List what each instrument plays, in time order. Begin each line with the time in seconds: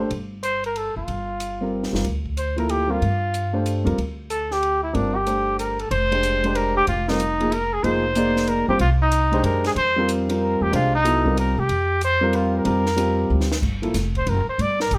0.11 upright bass G1, ride
0.43 trumpet C5, hi-hat pedal, ride
0.64 trumpet A#4, ride
0.76 trumpet A4, ride
0.96 upright bass F1, trumpet F4
1.08 upright bass G1, ride
1.40 hi-hat pedal, ride
1.61 upright piano G3 C4 F4 A#4
1.83 snare
1.92 upright bass F#1, upright piano G3 C4 F4 A#4, snare
2.04 upright bass D2, kick, ride
2.26 kick
2.37 trumpet C5, hi-hat pedal, ride
2.56 upright piano F3 A#3 E4 A4, trumpet A#4, ride
2.69 trumpet G4, ride
2.88 upright piano G3 C4 F4 A#4, trumpet F4
3.02 upright bass G2, ride
3.34 hi-hat pedal, ride
3.53 upright piano A3 D4 G4 C5
3.66 hi-hat pedal, ride
3.84 upright bass F2, upright piano G3 C4 F4 A#4, ride
3.98 upright bass D2, ride
4.30 trumpet A4, hi-hat pedal, ride
4.51 trumpet G4, snare
4.63 ride
4.83 trumpet E4
4.93 upright bass G1, upright piano G3 C4 F4 A#4, trumpet D4, ride
5.15 trumpet G4
5.26 upright piano A3 D4 G4 C5, hi-hat pedal, ride
5.59 trumpet A#4, hi-hat pedal, ride
5.79 trumpet A4, ride
5.91 upright bass F1, trumpet C5, ride
6.11 upright piano G#3 D4 G4 C5, ride
6.23 hi-hat pedal, ride
6.44 upright piano G#3 D4 G4 C5, ride
6.55 trumpet A#4, ride
6.77 trumpet G4
6.87 upright bass F1, trumpet F4, ride
7.08 upright piano G3 C4 F4 A#4, trumpet D#4, snare
7.20 hi-hat pedal, ride
7.40 upright piano F3 A#3 D#4 G#4, ride
7.52 trumpet A#4, ride
7.73 trumpet G#4
7.83 upright bass F1, upright piano F3 A#3 D#4 G#4, trumpet C5, ride
8.15 upright piano A#3 D#4 G#4 D5, hi-hat pedal, ride
8.36 snare
8.47 trumpet A#4, ride
8.68 upright bass F#1, upright piano G3 C4 F4 C5, trumpet G4
8.79 upright bass C2, trumpet F4, ride
9.02 trumpet D#4
9.12 hi-hat pedal, ride
9.32 upright piano G#3 D4 G4 C5, ride
9.43 upright bass F#2, trumpet A#4, ride
9.64 trumpet G#4, snare, ride
9.76 upright bass F2, trumpet C5, ride
9.96 upright piano G3 C4 F4 A#4
10.09 hi-hat pedal, ride
10.29 upright piano G3 C4 F4 A#4, ride
10.42 trumpet A#4
10.61 upright bass E2, trumpet G4
10.71 upright bass C2, upright piano G#3 D4 G4 C5, trumpet F4, ride
10.95 trumpet D#4
11.04 upright piano F#3 B3 E4 A4, hi-hat pedal, ride
11.25 upright piano G3 C4 F4 A#4, kick
11.37 trumpet A#4, ride
11.58 upright bass C3, trumpet G4
11.69 upright bass F2, ride
12.01 trumpet C5, hi-hat pedal, ride
12.21 upright piano G3 C4 F4 A#4
12.33 trumpet F4, ride
12.57 trumpet A#4
12.64 upright bass F2, upright piano G3 C4 F4 A#4, ride
12.86 snare
12.96 upright piano G3 C4 F4 G4, hi-hat pedal, ride
13.30 upright bass D2
13.41 snare
13.52 snare
13.62 upright bass G1, kick, crash
13.82 upright piano F3 A#3 E4 A4, ride
13.94 upright bass F1, snare, hi-hat pedal, ride
14.15 trumpet C5, kick, ride
14.27 upright bass F#1, trumpet A#4, ride
14.47 trumpet C5, muted upright bass stroke
14.58 upright bass G1, trumpet D5, ride
14.80 trumpet A#4, snare
14.91 upright bass G#1, trumpet G4, hi-hat pedal, ride